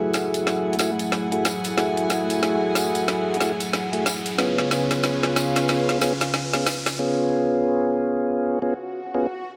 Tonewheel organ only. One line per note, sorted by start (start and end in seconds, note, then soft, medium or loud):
0.00 0.77 A3 medium
0.00 0.77 E4 medium
0.00 0.77 F#4 medium
0.00 0.77 G#4 medium
0.79 0.91 A3 loud
0.79 0.91 E4 medium
0.79 0.91 F#4 medium
0.79 0.91 G#4 loud
1.32 1.44 A3 medium
1.32 1.44 E4 medium
1.32 1.44 F#4 medium
1.32 1.44 G#4 medium
1.77 3.37 A3 medium
1.77 3.37 E4 medium
1.77 3.37 F#4 medium
1.77 3.37 G#4 medium
3.40 3.52 A3 loud
3.40 3.52 E4 medium
3.40 3.52 F#4 medium
3.40 3.52 G#4 loud
3.93 4.05 A3 medium
3.93 4.05 E4 medium
3.93 4.05 F#4 medium
3.93 4.05 G#4 medium
4.38 5.98 B3 medium
4.38 5.98 C#4 medium
4.38 5.98 F4 medium
4.38 5.98 G#4 medium
6.01 6.13 B3 loud
6.01 6.13 C#4 medium
6.01 6.13 F4 medium
6.01 6.13 G#4 loud
6.54 6.66 B3 medium
6.54 6.66 C#4 medium
6.54 6.66 F4 medium
6.54 6.66 G#4 medium
6.99 8.59 B3 medium
6.99 8.59 C#4 medium
6.99 8.59 F4 medium
6.99 8.59 G#4 loud
8.62 8.74 B3 loud
8.62 8.74 C#4 medium
8.62 8.74 F4 medium
8.62 8.74 G#4 loud
9.14 9.27 B3 medium
9.14 9.27 C#4 medium
9.14 9.27 F4 medium
9.14 9.27 G#4 medium